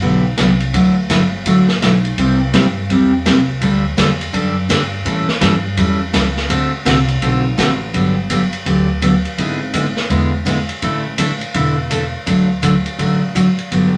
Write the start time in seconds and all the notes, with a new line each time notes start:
0.02 B1 D3 F#3 B3 D4 G4, kick
0.37 C2 D3 F#3 B3 D4 G4, kick, snare, hi-hat pedal, ride
0.60 ride
0.74 D2 D3 F#3 A3 E4 F#4, kick, ride
1.10 G1 D3 F#3 A3 E4 F#4, kick, snare, hi-hat pedal, ride
1.46 A1 D3 F#3 A3 E4 F#4, kick, ride
1.68 snare
1.82 B1 D3 F#3 A3 E4 F#4, kick, snare, hi-hat pedal, ride
2.05 ride
2.17 C2 C3 G3 C4 E4 G4, kick, ride
2.53 G2 C3 G3 C4 E4 G4, kick, snare, hi-hat pedal, ride
2.89 E2 C3 G3 C4 E4 G4, kick, ride
3.25 C2 C3 G3 C4 E4 G4, kick, snare, hi-hat pedal, ride
3.61 D2 D3 G3 D4 G4 A4, kick, ride
3.97 E2 D3 G3 D4 G4 A4, kick, snare, hi-hat pedal, ride
4.21 ride
4.33 F#2 D3 G3 D4 G4 A4, kick, ride
4.69 G2 D3 G3 D4 G4 A4, kick, snare, hi-hat pedal, ride
5.05 A2 E3 G3 C#4 E4 A4, kick, ride
5.27 muted upright bass stroke, snare
5.41 G2 E3 G3 C#4 E4 A4, kick, snare, hi-hat pedal, ride
5.77 E2 E3 G3 C#4 E4 A4, kick, ride
6.13 C#2 E3 G3 C#4 E4 A4, kick, snare, hi-hat pedal, ride
6.37 snare
6.49 D2 D3 A3 C4 F#4 A4, kick, ride
6.85 C2 D3 A3 C4 F#4 A4, kick, snare, hi-hat pedal, ride
7.08 ride
7.22 B1 D3 A3 C4 F#4 A4, kick, ride
7.57 A1 D3 A3 C4 F#4 A4, kick, snare, hi-hat pedal, ride
7.94 G1 D3 F#3 B3 D4 G4, kick, ride
8.30 D3 F#3 B3 D4 G4, kick, hi-hat pedal, ride
8.53 ride
8.66 D2 D3 F#3 B3 D4 G4, kick, ride
9.02 D3 F#3 B3 D4 G4, kick, hi-hat pedal, ride
9.25 ride
9.38 G#1 D3 G#3 B3 E4 G#4, kick, ride
9.73 D3 G#3 B3 E4 G#4, kick, hi-hat pedal, ride
9.97 snare
10.09 E2 D3 G#3 B3 E4 G#4, kick, ride
10.45 D3 G#3 B3 E4 G#4, kick, hi-hat pedal, ride
10.69 ride
10.82 A1 D3 A3 D4 E4 A4, kick, ride
11.18 D3 A3 D4 E4 A4, kick, hi-hat pedal, ride
11.41 ride
11.54 E1 D3 A3 D4 E4 A4, kick, ride
11.90 D3 A3 D4 E4 A4, kick, hi-hat pedal, ride
12.26 D2 D3 F#3 A3 D4 F#4, kick, ride
12.62 D3 F#3 A3 D4 F#4, kick, hi-hat pedal, ride
12.86 ride
12.98 A1 D3 F#3 A3 D4 F#4, kick, ride
13.35 D3 F#3 A3 D4 F#4, kick, hi-hat pedal, ride
13.58 ride
13.71 G1 D3 F#3 B3 D4 G4, kick, ride